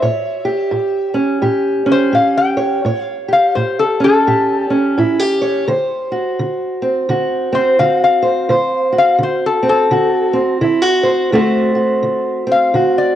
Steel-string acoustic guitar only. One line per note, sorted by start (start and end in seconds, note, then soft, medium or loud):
0.02 0.66 A2 medium
0.02 2.56 C#5 medium
0.45 1.42 G4 medium
0.71 1.36 A2 medium
1.14 1.84 C#4 medium
1.42 2.07 A2 medium
1.42 2.11 G4 medium
1.86 2.80 C#4 medium
2.12 2.77 A2 medium
2.12 2.80 G4 medium
2.57 2.80 C#5 medium
2.85 3.49 A2 medium
2.85 5.39 C#5 medium
3.28 4.25 G4 soft
3.56 4.20 A2 medium
4.00 4.69 C#4 soft
4.27 4.91 A2 medium
4.27 4.96 G4 medium
4.70 5.64 C#4 medium
4.98 5.61 A2 medium
4.98 5.19 E4 medium
5.19 5.67 G4 soft
5.42 5.64 C#5 medium
5.68 6.32 D3 medium
5.68 8.22 C5 medium
6.12 7.09 F#4 medium
6.39 7.03 D3 medium
6.82 7.52 C4 soft
7.09 7.73 D3 medium
7.09 7.80 F#4 medium
7.52 9.61 C4 medium
7.80 8.44 D3 medium
7.80 8.53 F#4 medium
8.22 8.50 C5 medium
8.49 9.14 D3 medium
8.49 11.02 C5 medium
8.92 9.90 F#4 medium
9.19 9.84 D3 medium
9.63 10.32 C4 soft
9.91 10.55 D3 medium
9.91 10.61 F#4 medium
10.33 11.32 C4 medium
10.61 11.26 D3 medium
10.61 10.82 E4 medium
10.82 11.31 F#4 soft
11.03 11.28 C5 medium
11.32 11.97 D3 medium
11.32 13.15 A3 medium
11.32 12.46 C4 medium
11.32 11.75 F#4 medium
11.32 13.15 C5 medium
11.75 12.75 F#4 soft
12.03 12.67 D3 medium
12.47 13.15 C4 medium
12.74 13.15 D3 medium
12.74 13.15 F#4 medium